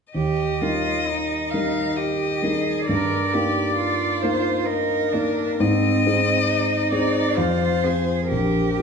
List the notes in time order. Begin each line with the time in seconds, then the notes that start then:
0.13 D#2 G4 D#5
0.61 G3 D#4 F4 A#4
1.08 D#4
1.50 G3 D#4 A#4 F5
1.96 G4 D#5
2.42 G3 D#4 G#4 A#4
2.87 G2 A#4 D5
3.33 A#3 D#4 G4 A#4
3.76 F4
4.22 A#3 D#4 A#4 C5
4.66 D#4 A#4
5.13 A#3 D4 D#4 A#4
5.58 G#2 C4 D#5
6.06 C4 D#4 G#4
6.46 D#4
6.92 C4 D#4 G#4 D5
7.36 F2 F4 C5
7.83 C4 F4 G#4
8.29 A#1 G4 A#4